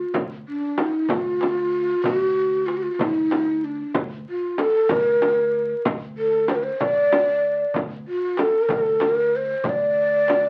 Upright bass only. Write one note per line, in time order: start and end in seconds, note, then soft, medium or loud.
0.14 0.42 D2 medium
1.09 1.92 D2 medium
2.04 2.86 D2 medium
2.99 3.81 D2 medium
3.95 4.22 D2 medium
4.90 5.72 D2 medium
5.86 6.68 D2 medium
6.81 7.63 D2 medium
7.75 8.03 D2 medium
8.70 9.52 D2 medium
9.65 10.47 D2 medium